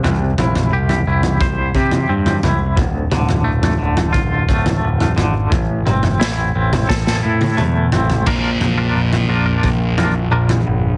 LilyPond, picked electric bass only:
\new Staff \with { instrumentName = "Picked electric bass" } { \clef bass \time 4/4 \key bes \lydian \tempo 4 = 88 c,8 bes,,8 c,8 c,8 c,8 c8 g,8 c,8 | d,,8 d,,8 d,,8 d,,8 d,,8 d,,8 d,,8 gis,,8 | a,,8 g,,8 a,,8 a,,8 a,,8 a,8 e,8 a,,8 | bes,,8 bes,,8 bes,,8 bes,,8 bes,,8 bes,,8 bes,,8 g,,8 | }